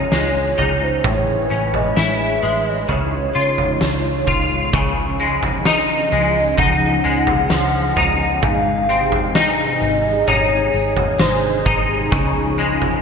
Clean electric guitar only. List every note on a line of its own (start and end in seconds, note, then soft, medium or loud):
0.00 1.04 C#3 medium
0.00 1.14 F3 medium
0.00 0.12 G#3 medium
0.00 0.57 D#4 medium
0.12 1.50 G#3 medium
0.58 1.13 D#4 medium
1.04 2.98 A2 medium
1.50 5.00 C#4 soft
1.97 2.98 E4 medium
2.43 5.20 G#3 medium
2.88 4.72 C#3 medium
3.35 4.27 F4 medium
4.27 5.65 F4 medium
4.74 8.43 C#3 medium
5.20 6.12 G#3 medium
5.66 6.58 D#4 medium
6.12 7.04 G#3 medium
6.58 7.96 D#4 medium
7.04 8.89 G#3 medium
7.51 8.52 F3 medium
7.97 9.35 D#4 medium
8.43 12.12 G#2 medium
8.89 9.81 C4 medium
9.35 10.27 D#4 medium
10.28 11.65 D#4 medium
11.20 12.58 G#3 medium
11.66 13.02 D#4 medium
12.12 13.02 C#3 medium
12.58 13.02 G#3 medium